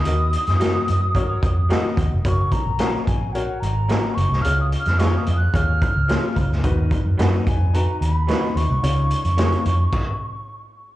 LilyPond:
<<
  \new Staff \with { instrumentName = "Flute" } { \time 4/4 \key cis \mixolydian \tempo 4 = 110 dis'''2.~ dis'''8 r8 | cis'''8 ais''4 gis''8 fis''8 ais''4 cis'''8 | \tuplet 3/2 { eis'''8 dis'''8 eis'''8 cis'''8 dis'''8 fis'''8 } eis'''4. r8 | r4. gis''8 ais''8 b''4 cis'''8~ |
cis'''2. r4 | }
  \new Staff \with { instrumentName = "Grand piano" } { \time 4/4 \key cis \mixolydian <fis' ais' dis''>8 r8 <fis' ais' dis''>8 r8 <fis' ais' cis''>8 r8 <fis' ais' dis''>8 r8 | <fis' ais' cis''>8 r8 <fis' ais' cis''>8 r8 <fis' ais' cis''>8 r8 <fis' ais' dis''>8 r8 | <eis' gis' cis''>8 r8 <eis' gis' ais'>8 r8 <eis' gis' cis''>8 r8 <eis' gis' cis''>8 r8 | <dis' fis' b'>8 r8 <dis' fis' b'>8 r8 <dis' fis' b'>8 r8 <dis' fis' b'>8 r8 |
<dis' eis' cis''>8 r8 <dis' eis' cis''>8 r2 r8 | }
  \new Staff \with { instrumentName = "Grand piano" } { \clef bass \time 4/4 \key cis \mixolydian dis4. r2 r8 | r1 | cis4. r2 r8 | dis4. r2 r8 |
cis4. r2 r8 | }
  \new Staff \with { instrumentName = "Clean electric guitar" } { \time 4/4 \key cis \mixolydian r4 <fis ais dis' fis'>16 r4. r16 <fis ais dis' fis'>16 r8. | r4 <fis ais cis' fis'>16 r4. r16 <fis ais cis' fis'>16 r8. | r4 <eis gis cis' eis'>16 r4. r16 <eis gis cis' eis'>16 r8. | r4 <fis b dis' fis'>16 r4. r16 <fis b dis' fis'>16 r8. |
r4 <dis gis cis' eis'>16 r2 r8. | }
  \new Staff \with { instrumentName = "Fingered electric bass" } { \clef bass \time 4/4 \key cis \mixolydian dis,8. fis,8. fis,4 eis,8. r16 dis,16 eis,,16 | fis,,8. ais,,8. ais,,4 gis,,8. r16 fis,,16 bis,,16 | cis,8. eis,8. eis,8 dis,8. cis,8 r16 cis,16 d,16 | dis,8. fis,16 fis,8 eis,4 dis,8. r16 dis,16 bis,,16 |
cis,8. eis,8. eis,8 r2 | }
  \new DrumStaff \with { instrumentName = "Drums" } \drummode { \time 4/4 hh8 hh16 <hh sn>16 <hh sn>8 hh8 <hh bd>8 <hh bd>8 <hh sn>8 <hh bd>8 | <hh bd>8 <hh bd>8 <hh sn>8 <hh bd>8 hh8 hh8 <hh sn>8 hh16 sn16 | hh8 hh16 <hh sn>16 <hh sn>8 hh8 <hh bd>8 <hh bd>8 <hh sn>8 <hh bd>16 sn16 | <hh bd>8 <hh bd>8 <hh sn>8 <hh bd>8 hh8 hh8 <hh sn>8 hh8 |
hh8 hh16 hh16 <hh sn>16 hh16 hh8 <cymc bd>4 r4 | }
>>